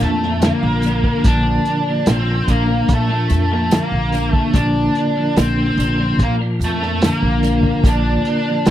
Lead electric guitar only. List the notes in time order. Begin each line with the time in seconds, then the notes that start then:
0.03 A3
0.44 A#3
1.26 D4
2.09 C4
2.50 A#3
2.93 A3
3.53 A3
3.76 A#3
4.28 A3
4.56 D4
5.40 C4
6.23 A#3
6.64 A3
7.04 A3
7.15 A#3
7.87 D4
8.67 C4